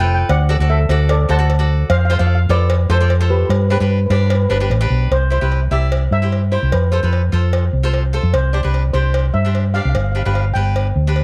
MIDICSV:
0, 0, Header, 1, 5, 480
1, 0, Start_track
1, 0, Key_signature, 0, "major"
1, 0, Tempo, 402414
1, 351, Time_signature, 4, 2, 24, 8
1, 13406, End_track
2, 0, Start_track
2, 0, Title_t, "Steel pan"
2, 0, Program_c, 0, 114
2, 87, Note_on_c, 0, 79, 66
2, 155, Note_off_c, 0, 79, 0
2, 169, Note_on_c, 0, 79, 84
2, 255, Note_off_c, 0, 79, 0
2, 358, Note_on_c, 0, 78, 103
2, 361, Note_on_c, 0, 74, 77
2, 802, Note_off_c, 0, 74, 0
2, 830, Note_on_c, 0, 76, 89
2, 834, Note_on_c, 0, 69, 71
2, 847, Note_off_c, 0, 78, 0
2, 1277, Note_off_c, 0, 69, 0
2, 1318, Note_on_c, 0, 74, 86
2, 1321, Note_on_c, 0, 69, 70
2, 1322, Note_off_c, 0, 76, 0
2, 1538, Note_off_c, 0, 69, 0
2, 1558, Note_on_c, 0, 81, 104
2, 1559, Note_off_c, 0, 74, 0
2, 1559, Note_on_c, 0, 78, 83
2, 1998, Note_off_c, 0, 81, 0
2, 1999, Note_off_c, 0, 78, 0
2, 2263, Note_on_c, 0, 77, 94
2, 2270, Note_on_c, 0, 72, 66
2, 2346, Note_off_c, 0, 77, 0
2, 2355, Note_off_c, 0, 72, 0
2, 2360, Note_on_c, 0, 77, 67
2, 2433, Note_off_c, 0, 77, 0
2, 2447, Note_on_c, 0, 77, 83
2, 2517, Note_off_c, 0, 77, 0
2, 2531, Note_on_c, 0, 77, 69
2, 2601, Note_off_c, 0, 77, 0
2, 2615, Note_on_c, 0, 77, 77
2, 2692, Note_off_c, 0, 77, 0
2, 2706, Note_on_c, 0, 77, 70
2, 2789, Note_off_c, 0, 77, 0
2, 2804, Note_on_c, 0, 77, 72
2, 2888, Note_off_c, 0, 77, 0
2, 2986, Note_on_c, 0, 74, 96
2, 2991, Note_on_c, 0, 71, 76
2, 3432, Note_off_c, 0, 71, 0
2, 3456, Note_on_c, 0, 72, 89
2, 3459, Note_on_c, 0, 69, 71
2, 3477, Note_off_c, 0, 74, 0
2, 3905, Note_off_c, 0, 69, 0
2, 3936, Note_on_c, 0, 71, 84
2, 3941, Note_on_c, 0, 67, 59
2, 3951, Note_off_c, 0, 72, 0
2, 4013, Note_off_c, 0, 71, 0
2, 4027, Note_off_c, 0, 67, 0
2, 4027, Note_on_c, 0, 71, 57
2, 4104, Note_off_c, 0, 71, 0
2, 4118, Note_on_c, 0, 71, 61
2, 4201, Note_off_c, 0, 71, 0
2, 4215, Note_on_c, 0, 71, 46
2, 4295, Note_off_c, 0, 71, 0
2, 4309, Note_on_c, 0, 71, 54
2, 4379, Note_off_c, 0, 71, 0
2, 4393, Note_on_c, 0, 71, 49
2, 4465, Note_off_c, 0, 71, 0
2, 4480, Note_on_c, 0, 71, 49
2, 4563, Note_off_c, 0, 71, 0
2, 4575, Note_on_c, 0, 71, 45
2, 4643, Note_off_c, 0, 71, 0
2, 4657, Note_on_c, 0, 71, 51
2, 4738, Note_off_c, 0, 71, 0
2, 4752, Note_on_c, 0, 71, 44
2, 4831, Note_off_c, 0, 71, 0
2, 4844, Note_on_c, 0, 71, 53
2, 4904, Note_off_c, 0, 71, 0
2, 4918, Note_on_c, 0, 71, 46
2, 4999, Note_off_c, 0, 71, 0
2, 5013, Note_on_c, 0, 71, 52
2, 5082, Note_off_c, 0, 71, 0
2, 5096, Note_on_c, 0, 71, 45
2, 5172, Note_off_c, 0, 71, 0
2, 5187, Note_on_c, 0, 71, 55
2, 5261, Note_off_c, 0, 71, 0
2, 5275, Note_on_c, 0, 71, 55
2, 5346, Note_off_c, 0, 71, 0
2, 5360, Note_on_c, 0, 71, 63
2, 5450, Note_off_c, 0, 71, 0
2, 6107, Note_on_c, 0, 72, 84
2, 6326, Note_off_c, 0, 72, 0
2, 6341, Note_on_c, 0, 72, 78
2, 6785, Note_off_c, 0, 72, 0
2, 6819, Note_on_c, 0, 76, 95
2, 7291, Note_off_c, 0, 76, 0
2, 7306, Note_on_c, 0, 76, 92
2, 7749, Note_off_c, 0, 76, 0
2, 7779, Note_on_c, 0, 72, 83
2, 8002, Note_off_c, 0, 72, 0
2, 8017, Note_on_c, 0, 71, 77
2, 8251, Note_on_c, 0, 72, 67
2, 8266, Note_off_c, 0, 71, 0
2, 8702, Note_off_c, 0, 72, 0
2, 9942, Note_on_c, 0, 72, 85
2, 10178, Note_on_c, 0, 74, 77
2, 10191, Note_off_c, 0, 72, 0
2, 10656, Note_on_c, 0, 72, 79
2, 10677, Note_off_c, 0, 74, 0
2, 11137, Note_on_c, 0, 76, 91
2, 11158, Note_off_c, 0, 72, 0
2, 11618, Note_on_c, 0, 77, 90
2, 11639, Note_off_c, 0, 76, 0
2, 11689, Note_off_c, 0, 77, 0
2, 11703, Note_on_c, 0, 77, 58
2, 11786, Note_off_c, 0, 77, 0
2, 11800, Note_on_c, 0, 77, 59
2, 11880, Note_off_c, 0, 77, 0
2, 11894, Note_on_c, 0, 77, 50
2, 11966, Note_off_c, 0, 77, 0
2, 11980, Note_on_c, 0, 77, 54
2, 12053, Note_off_c, 0, 77, 0
2, 12068, Note_on_c, 0, 77, 50
2, 12141, Note_off_c, 0, 77, 0
2, 12155, Note_on_c, 0, 77, 54
2, 12239, Note_off_c, 0, 77, 0
2, 12253, Note_on_c, 0, 77, 51
2, 12319, Note_off_c, 0, 77, 0
2, 12333, Note_on_c, 0, 77, 61
2, 12402, Note_off_c, 0, 77, 0
2, 12416, Note_on_c, 0, 77, 52
2, 12520, Note_off_c, 0, 77, 0
2, 12567, Note_on_c, 0, 79, 91
2, 13406, Note_off_c, 0, 79, 0
2, 13406, End_track
3, 0, Start_track
3, 0, Title_t, "Cavaquinho"
3, 0, Program_c, 1, 24
3, 0, Note_on_c, 1, 65, 77
3, 0, Note_on_c, 1, 69, 59
3, 0, Note_on_c, 1, 71, 86
3, 344, Note_off_c, 1, 65, 0
3, 346, Note_off_c, 1, 69, 0
3, 352, Note_off_c, 1, 71, 0
3, 584, Note_on_c, 1, 66, 79
3, 593, Note_on_c, 1, 69, 73
3, 599, Note_on_c, 1, 74, 86
3, 663, Note_off_c, 1, 66, 0
3, 667, Note_off_c, 1, 69, 0
3, 670, Note_off_c, 1, 74, 0
3, 719, Note_on_c, 1, 66, 72
3, 730, Note_on_c, 1, 69, 67
3, 737, Note_on_c, 1, 74, 83
3, 932, Note_off_c, 1, 66, 0
3, 937, Note_off_c, 1, 69, 0
3, 941, Note_off_c, 1, 74, 0
3, 1071, Note_on_c, 1, 66, 80
3, 1082, Note_on_c, 1, 69, 62
3, 1086, Note_on_c, 1, 74, 89
3, 1361, Note_off_c, 1, 66, 0
3, 1362, Note_off_c, 1, 69, 0
3, 1367, Note_off_c, 1, 74, 0
3, 1535, Note_on_c, 1, 66, 72
3, 1539, Note_on_c, 1, 69, 73
3, 1547, Note_on_c, 1, 72, 76
3, 1616, Note_off_c, 1, 66, 0
3, 1619, Note_off_c, 1, 69, 0
3, 1620, Note_off_c, 1, 72, 0
3, 1653, Note_on_c, 1, 66, 75
3, 1662, Note_on_c, 1, 69, 68
3, 1668, Note_on_c, 1, 74, 73
3, 1802, Note_off_c, 1, 66, 0
3, 1806, Note_off_c, 1, 69, 0
3, 1809, Note_off_c, 1, 74, 0
3, 1895, Note_on_c, 1, 66, 78
3, 1904, Note_on_c, 1, 69, 67
3, 1910, Note_on_c, 1, 74, 64
3, 2256, Note_off_c, 1, 66, 0
3, 2261, Note_off_c, 1, 69, 0
3, 2262, Note_off_c, 1, 74, 0
3, 2503, Note_on_c, 1, 65, 77
3, 2509, Note_on_c, 1, 69, 63
3, 2511, Note_on_c, 1, 72, 88
3, 2580, Note_off_c, 1, 65, 0
3, 2580, Note_off_c, 1, 69, 0
3, 2583, Note_off_c, 1, 72, 0
3, 2614, Note_on_c, 1, 65, 69
3, 2619, Note_on_c, 1, 69, 71
3, 2628, Note_on_c, 1, 74, 71
3, 2836, Note_off_c, 1, 65, 0
3, 2839, Note_off_c, 1, 69, 0
3, 2841, Note_off_c, 1, 74, 0
3, 2974, Note_on_c, 1, 65, 72
3, 2980, Note_on_c, 1, 69, 66
3, 2992, Note_on_c, 1, 72, 84
3, 3269, Note_off_c, 1, 65, 0
3, 3269, Note_off_c, 1, 69, 0
3, 3277, Note_off_c, 1, 72, 0
3, 3455, Note_on_c, 1, 65, 86
3, 3466, Note_on_c, 1, 69, 65
3, 3471, Note_on_c, 1, 72, 84
3, 3534, Note_off_c, 1, 65, 0
3, 3536, Note_off_c, 1, 69, 0
3, 3541, Note_off_c, 1, 72, 0
3, 3584, Note_on_c, 1, 65, 71
3, 3590, Note_on_c, 1, 69, 63
3, 3598, Note_on_c, 1, 74, 74
3, 3724, Note_off_c, 1, 65, 0
3, 3727, Note_off_c, 1, 69, 0
3, 3731, Note_off_c, 1, 74, 0
3, 3823, Note_on_c, 1, 65, 75
3, 3825, Note_on_c, 1, 69, 70
3, 3835, Note_on_c, 1, 72, 67
3, 4177, Note_off_c, 1, 65, 0
3, 4179, Note_off_c, 1, 69, 0
3, 4182, Note_off_c, 1, 72, 0
3, 4416, Note_on_c, 1, 62, 80
3, 4427, Note_on_c, 1, 67, 60
3, 4429, Note_on_c, 1, 71, 80
3, 4494, Note_off_c, 1, 62, 0
3, 4496, Note_off_c, 1, 67, 0
3, 4499, Note_off_c, 1, 71, 0
3, 4536, Note_on_c, 1, 62, 70
3, 4543, Note_on_c, 1, 67, 62
3, 4554, Note_on_c, 1, 71, 81
3, 4754, Note_off_c, 1, 62, 0
3, 4758, Note_off_c, 1, 67, 0
3, 4763, Note_off_c, 1, 71, 0
3, 4894, Note_on_c, 1, 62, 79
3, 4898, Note_on_c, 1, 67, 73
3, 4908, Note_on_c, 1, 74, 78
3, 5185, Note_off_c, 1, 62, 0
3, 5189, Note_off_c, 1, 67, 0
3, 5189, Note_off_c, 1, 74, 0
3, 5364, Note_on_c, 1, 62, 72
3, 5371, Note_on_c, 1, 67, 69
3, 5385, Note_on_c, 1, 71, 73
3, 5446, Note_off_c, 1, 62, 0
3, 5451, Note_off_c, 1, 67, 0
3, 5453, Note_off_c, 1, 71, 0
3, 5490, Note_on_c, 1, 62, 65
3, 5495, Note_on_c, 1, 67, 64
3, 5501, Note_on_c, 1, 71, 74
3, 5635, Note_off_c, 1, 62, 0
3, 5638, Note_off_c, 1, 67, 0
3, 5641, Note_off_c, 1, 71, 0
3, 5733, Note_on_c, 1, 62, 84
3, 5737, Note_on_c, 1, 67, 76
3, 5746, Note_on_c, 1, 71, 84
3, 6091, Note_off_c, 1, 62, 0
3, 6095, Note_off_c, 1, 67, 0
3, 6095, Note_off_c, 1, 71, 0
3, 6326, Note_on_c, 1, 64, 65
3, 6336, Note_on_c, 1, 67, 52
3, 6341, Note_on_c, 1, 72, 74
3, 6408, Note_off_c, 1, 64, 0
3, 6409, Note_off_c, 1, 67, 0
3, 6414, Note_off_c, 1, 72, 0
3, 6455, Note_on_c, 1, 64, 61
3, 6457, Note_on_c, 1, 67, 63
3, 6466, Note_on_c, 1, 71, 61
3, 6673, Note_off_c, 1, 64, 0
3, 6676, Note_off_c, 1, 67, 0
3, 6677, Note_off_c, 1, 71, 0
3, 6811, Note_on_c, 1, 64, 69
3, 6819, Note_on_c, 1, 67, 58
3, 6827, Note_on_c, 1, 74, 74
3, 7182, Note_off_c, 1, 64, 0
3, 7182, Note_off_c, 1, 67, 0
3, 7188, Note_off_c, 1, 74, 0
3, 7420, Note_on_c, 1, 64, 60
3, 7428, Note_on_c, 1, 67, 56
3, 7436, Note_on_c, 1, 72, 62
3, 7637, Note_off_c, 1, 64, 0
3, 7641, Note_off_c, 1, 67, 0
3, 7645, Note_off_c, 1, 72, 0
3, 7773, Note_on_c, 1, 64, 61
3, 7779, Note_on_c, 1, 67, 57
3, 7786, Note_on_c, 1, 72, 65
3, 8016, Note_off_c, 1, 64, 0
3, 8019, Note_off_c, 1, 67, 0
3, 8022, Note_off_c, 1, 72, 0
3, 8251, Note_on_c, 1, 65, 71
3, 8260, Note_on_c, 1, 69, 65
3, 8269, Note_on_c, 1, 72, 79
3, 8331, Note_off_c, 1, 65, 0
3, 8336, Note_off_c, 1, 69, 0
3, 8340, Note_off_c, 1, 72, 0
3, 8383, Note_on_c, 1, 65, 60
3, 8391, Note_on_c, 1, 69, 61
3, 8400, Note_on_c, 1, 71, 65
3, 8600, Note_off_c, 1, 65, 0
3, 8604, Note_off_c, 1, 69, 0
3, 8606, Note_off_c, 1, 71, 0
3, 8735, Note_on_c, 1, 65, 70
3, 8747, Note_on_c, 1, 72, 79
3, 8749, Note_on_c, 1, 69, 57
3, 9107, Note_off_c, 1, 65, 0
3, 9109, Note_off_c, 1, 69, 0
3, 9111, Note_off_c, 1, 72, 0
3, 9344, Note_on_c, 1, 65, 76
3, 9351, Note_on_c, 1, 69, 70
3, 9360, Note_on_c, 1, 72, 86
3, 9562, Note_off_c, 1, 65, 0
3, 9565, Note_off_c, 1, 69, 0
3, 9570, Note_off_c, 1, 72, 0
3, 9698, Note_on_c, 1, 65, 78
3, 9704, Note_on_c, 1, 69, 73
3, 9710, Note_on_c, 1, 72, 71
3, 9942, Note_off_c, 1, 65, 0
3, 9945, Note_off_c, 1, 69, 0
3, 9946, Note_off_c, 1, 72, 0
3, 10175, Note_on_c, 1, 62, 65
3, 10183, Note_on_c, 1, 67, 57
3, 10188, Note_on_c, 1, 72, 77
3, 10256, Note_off_c, 1, 62, 0
3, 10258, Note_off_c, 1, 67, 0
3, 10262, Note_off_c, 1, 72, 0
3, 10293, Note_on_c, 1, 62, 67
3, 10305, Note_on_c, 1, 67, 55
3, 10312, Note_on_c, 1, 71, 71
3, 10520, Note_off_c, 1, 62, 0
3, 10522, Note_off_c, 1, 67, 0
3, 10527, Note_off_c, 1, 71, 0
3, 10659, Note_on_c, 1, 62, 73
3, 10665, Note_on_c, 1, 67, 67
3, 10672, Note_on_c, 1, 72, 75
3, 11030, Note_off_c, 1, 62, 0
3, 11033, Note_off_c, 1, 67, 0
3, 11037, Note_off_c, 1, 72, 0
3, 11267, Note_on_c, 1, 62, 59
3, 11280, Note_on_c, 1, 67, 49
3, 11284, Note_on_c, 1, 72, 67
3, 11488, Note_off_c, 1, 62, 0
3, 11490, Note_off_c, 1, 67, 0
3, 11495, Note_off_c, 1, 72, 0
3, 11623, Note_on_c, 1, 62, 61
3, 11631, Note_on_c, 1, 67, 55
3, 11638, Note_on_c, 1, 74, 64
3, 11867, Note_off_c, 1, 62, 0
3, 11871, Note_off_c, 1, 67, 0
3, 11875, Note_off_c, 1, 74, 0
3, 12104, Note_on_c, 1, 62, 68
3, 12112, Note_on_c, 1, 67, 61
3, 12118, Note_on_c, 1, 71, 57
3, 12184, Note_off_c, 1, 62, 0
3, 12188, Note_off_c, 1, 67, 0
3, 12188, Note_off_c, 1, 71, 0
3, 12230, Note_on_c, 1, 62, 64
3, 12238, Note_on_c, 1, 67, 50
3, 12238, Note_on_c, 1, 71, 66
3, 12450, Note_off_c, 1, 62, 0
3, 12451, Note_off_c, 1, 67, 0
3, 12453, Note_off_c, 1, 71, 0
3, 12584, Note_on_c, 1, 62, 68
3, 12593, Note_on_c, 1, 67, 63
3, 12598, Note_on_c, 1, 71, 78
3, 12955, Note_off_c, 1, 62, 0
3, 12960, Note_off_c, 1, 67, 0
3, 12962, Note_off_c, 1, 71, 0
3, 13208, Note_on_c, 1, 62, 72
3, 13213, Note_on_c, 1, 67, 65
3, 13222, Note_on_c, 1, 71, 81
3, 13406, Note_off_c, 1, 62, 0
3, 13406, Note_off_c, 1, 67, 0
3, 13406, Note_off_c, 1, 71, 0
3, 13406, End_track
4, 0, Start_track
4, 0, Title_t, "Fingered electric bass"
4, 0, Program_c, 2, 33
4, 0, Note_on_c, 2, 29, 77
4, 266, Note_off_c, 2, 29, 0
4, 350, Note_on_c, 2, 38, 98
4, 673, Note_off_c, 2, 38, 0
4, 710, Note_on_c, 2, 38, 88
4, 1024, Note_off_c, 2, 38, 0
4, 1059, Note_on_c, 2, 38, 95
4, 1486, Note_off_c, 2, 38, 0
4, 1541, Note_on_c, 2, 38, 75
4, 2177, Note_off_c, 2, 38, 0
4, 2263, Note_on_c, 2, 41, 96
4, 2586, Note_off_c, 2, 41, 0
4, 2621, Note_on_c, 2, 41, 85
4, 2936, Note_off_c, 2, 41, 0
4, 2973, Note_on_c, 2, 41, 99
4, 3399, Note_off_c, 2, 41, 0
4, 3451, Note_on_c, 2, 41, 83
4, 4089, Note_off_c, 2, 41, 0
4, 4167, Note_on_c, 2, 43, 98
4, 4494, Note_off_c, 2, 43, 0
4, 4537, Note_on_c, 2, 43, 80
4, 4852, Note_off_c, 2, 43, 0
4, 4889, Note_on_c, 2, 43, 93
4, 5316, Note_off_c, 2, 43, 0
4, 5370, Note_on_c, 2, 31, 76
4, 5588, Note_off_c, 2, 31, 0
4, 5606, Note_on_c, 2, 33, 80
4, 5826, Note_off_c, 2, 33, 0
4, 5848, Note_on_c, 2, 35, 83
4, 6068, Note_off_c, 2, 35, 0
4, 6096, Note_on_c, 2, 36, 88
4, 6419, Note_off_c, 2, 36, 0
4, 6463, Note_on_c, 2, 36, 68
4, 6775, Note_off_c, 2, 36, 0
4, 6813, Note_on_c, 2, 36, 73
4, 7238, Note_off_c, 2, 36, 0
4, 7290, Note_on_c, 2, 43, 77
4, 7829, Note_off_c, 2, 43, 0
4, 7905, Note_on_c, 2, 36, 76
4, 8005, Note_off_c, 2, 36, 0
4, 8026, Note_on_c, 2, 41, 83
4, 8347, Note_off_c, 2, 41, 0
4, 8387, Note_on_c, 2, 41, 78
4, 8700, Note_off_c, 2, 41, 0
4, 8741, Note_on_c, 2, 41, 78
4, 9166, Note_off_c, 2, 41, 0
4, 9221, Note_on_c, 2, 36, 70
4, 9758, Note_off_c, 2, 36, 0
4, 9821, Note_on_c, 2, 41, 80
4, 9926, Note_off_c, 2, 41, 0
4, 9941, Note_on_c, 2, 36, 91
4, 10267, Note_off_c, 2, 36, 0
4, 10311, Note_on_c, 2, 36, 75
4, 10625, Note_off_c, 2, 36, 0
4, 10661, Note_on_c, 2, 36, 77
4, 11088, Note_off_c, 2, 36, 0
4, 11139, Note_on_c, 2, 43, 74
4, 11680, Note_off_c, 2, 43, 0
4, 11751, Note_on_c, 2, 36, 72
4, 11854, Note_off_c, 2, 36, 0
4, 11864, Note_on_c, 2, 31, 84
4, 12191, Note_off_c, 2, 31, 0
4, 12236, Note_on_c, 2, 31, 76
4, 12550, Note_off_c, 2, 31, 0
4, 12587, Note_on_c, 2, 31, 71
4, 13014, Note_off_c, 2, 31, 0
4, 13070, Note_on_c, 2, 38, 71
4, 13406, Note_off_c, 2, 38, 0
4, 13406, End_track
5, 0, Start_track
5, 0, Title_t, "Drums"
5, 351, Note_on_c, 9, 56, 89
5, 470, Note_off_c, 9, 56, 0
5, 590, Note_on_c, 9, 56, 69
5, 709, Note_off_c, 9, 56, 0
5, 1066, Note_on_c, 9, 56, 76
5, 1185, Note_off_c, 9, 56, 0
5, 1303, Note_on_c, 9, 56, 94
5, 1422, Note_off_c, 9, 56, 0
5, 1547, Note_on_c, 9, 56, 68
5, 1666, Note_off_c, 9, 56, 0
5, 1786, Note_on_c, 9, 56, 75
5, 1905, Note_off_c, 9, 56, 0
5, 2264, Note_on_c, 9, 56, 99
5, 2383, Note_off_c, 9, 56, 0
5, 2502, Note_on_c, 9, 56, 79
5, 2621, Note_off_c, 9, 56, 0
5, 2983, Note_on_c, 9, 56, 75
5, 3103, Note_off_c, 9, 56, 0
5, 3217, Note_on_c, 9, 56, 101
5, 3336, Note_off_c, 9, 56, 0
5, 3459, Note_on_c, 9, 56, 76
5, 3579, Note_off_c, 9, 56, 0
5, 3698, Note_on_c, 9, 56, 77
5, 3818, Note_off_c, 9, 56, 0
5, 4178, Note_on_c, 9, 56, 96
5, 4298, Note_off_c, 9, 56, 0
5, 4421, Note_on_c, 9, 56, 73
5, 4541, Note_off_c, 9, 56, 0
5, 4897, Note_on_c, 9, 56, 81
5, 5016, Note_off_c, 9, 56, 0
5, 5133, Note_on_c, 9, 56, 94
5, 5252, Note_off_c, 9, 56, 0
5, 5378, Note_on_c, 9, 56, 71
5, 5497, Note_off_c, 9, 56, 0
5, 5620, Note_on_c, 9, 56, 73
5, 5739, Note_off_c, 9, 56, 0
5, 6103, Note_on_c, 9, 56, 76
5, 6222, Note_off_c, 9, 56, 0
5, 6580, Note_on_c, 9, 56, 57
5, 6699, Note_off_c, 9, 56, 0
5, 7060, Note_on_c, 9, 56, 83
5, 7179, Note_off_c, 9, 56, 0
5, 7543, Note_on_c, 9, 56, 61
5, 7662, Note_off_c, 9, 56, 0
5, 8020, Note_on_c, 9, 56, 93
5, 8139, Note_off_c, 9, 56, 0
5, 8502, Note_on_c, 9, 56, 69
5, 8621, Note_off_c, 9, 56, 0
5, 8982, Note_on_c, 9, 56, 87
5, 9102, Note_off_c, 9, 56, 0
5, 9466, Note_on_c, 9, 56, 65
5, 9585, Note_off_c, 9, 56, 0
5, 9945, Note_on_c, 9, 56, 85
5, 10064, Note_off_c, 9, 56, 0
5, 10427, Note_on_c, 9, 56, 64
5, 10546, Note_off_c, 9, 56, 0
5, 10904, Note_on_c, 9, 56, 81
5, 11023, Note_off_c, 9, 56, 0
5, 11389, Note_on_c, 9, 56, 66
5, 11508, Note_off_c, 9, 56, 0
5, 11866, Note_on_c, 9, 56, 86
5, 11985, Note_off_c, 9, 56, 0
5, 12348, Note_on_c, 9, 56, 67
5, 12467, Note_off_c, 9, 56, 0
5, 12833, Note_on_c, 9, 56, 78
5, 12952, Note_off_c, 9, 56, 0
5, 13311, Note_on_c, 9, 56, 61
5, 13406, Note_off_c, 9, 56, 0
5, 13406, End_track
0, 0, End_of_file